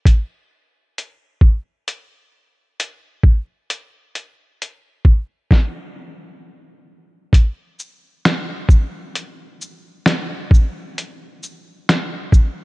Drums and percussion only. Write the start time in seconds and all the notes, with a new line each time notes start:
0.05 kick, closed hi-hat
0.98 closed hi-hat
1.41 kick
1.88 closed hi-hat
2.80 closed hi-hat
3.23 kick
3.70 closed hi-hat
4.15 closed hi-hat
4.62 closed hi-hat
5.05 kick
5.51 kick, snare
7.33 kick, closed hi-hat
7.79 shaker
8.25 finger snap, snare, closed hi-hat
8.69 kick, shaker
9.15 closed hi-hat
9.61 shaker
10.06 finger snap, snare, closed hi-hat
10.51 kick, shaker
10.98 closed hi-hat
11.43 shaker
11.89 finger snap, snare, closed hi-hat
12.32 kick, shaker